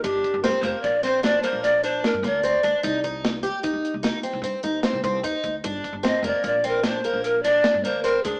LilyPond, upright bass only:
\new Staff \with { instrumentName = "Upright bass" } { \clef bass \time 7/4 \key g \phrygian \tempo 4 = 150 g,,8 r16 g,,8 r16 f,,16 r16 bes,,4.~ bes,,16 bes,,4. g,16 d,4 d,16 r16 | c,2 r16 ees,16 r16 c,8 r8 c,16 g,16 r16 ees,8 r16 c,16 c,8 ees,16 r16 d,8 | g,,8 r16 g,,8 r16 f,,16 r16 bes,,4.~ bes,,16 bes,,4. g,16 d,4 d,16 r16 | }